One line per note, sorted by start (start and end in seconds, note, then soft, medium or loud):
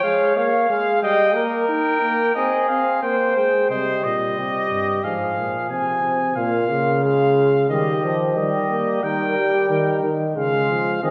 0.00 0.36 G#3 medium
0.00 0.38 C#5 medium
0.00 0.35 F5 medium
0.36 0.69 A#3 medium
0.36 0.68 C#5 medium
0.36 1.01 F5 loud
0.69 1.01 G#3 medium
0.69 1.02 F5 medium
1.02 1.36 G3 medium
1.02 1.35 D#5 loud
1.02 1.45 G5 medium
1.35 1.68 A#3 medium
1.35 2.34 A#4 medium
1.69 2.01 D#4 medium
1.69 2.32 G5 medium
2.02 2.35 A#3 medium
2.35 2.69 C4 medium
2.35 3.02 G#4 medium
2.35 2.67 D#5 medium
2.68 3.02 C4 medium
2.68 3.02 F5 medium
3.02 3.36 A#3 medium
3.02 3.69 C5 medium
3.02 3.35 G5 medium
3.36 3.70 G#3 medium
3.36 3.69 G5 medium
3.70 4.02 C3 medium
3.70 5.00 G3 medium
3.70 4.05 C5 medium
3.70 4.34 D#5 medium
4.04 4.37 A#2 medium
4.04 5.05 D#5 medium
4.38 4.70 C3 medium
4.38 5.06 G4 medium
4.71 5.03 G2 medium
5.03 5.36 G#2 medium
5.03 5.69 F3 medium
5.03 6.36 G#4 medium
5.03 5.69 F5 medium
5.37 5.71 A#2 medium
5.70 6.03 C3 medium
5.70 6.19 F3 medium
5.70 6.35 G#5 medium
6.03 6.36 C3 medium
6.36 6.72 A#2 medium
6.36 7.02 A#3 medium
6.36 7.53 F4 medium
6.36 7.02 F5 medium
6.70 7.69 C#3 medium
7.03 7.69 G#3 medium
7.03 7.68 F5 medium
7.69 8.35 D#3 medium
7.69 8.02 G3 medium
7.69 9.01 G4 medium
7.69 8.19 D#5 medium
8.03 8.38 F3 medium
8.36 8.70 D#3 medium
8.36 9.02 G3 medium
8.36 9.05 D#5 medium
8.70 9.03 A#3 medium
9.03 9.36 D#3 medium
9.03 9.69 G3 medium
9.03 9.69 A#4 medium
9.03 10.09 G5 medium
9.37 10.07 G3 medium
9.70 10.03 D#3 medium
9.70 10.12 A#4 medium
10.03 10.36 D#3 medium
10.36 10.69 C#3 medium
10.36 10.99 G#3 medium
10.36 10.99 F4 medium
10.36 10.99 F5 medium
10.70 11.02 F3 medium
11.03 11.11 D#3 medium
11.03 11.11 C4 medium
11.03 11.11 G#4 medium
11.03 11.11 D#5 medium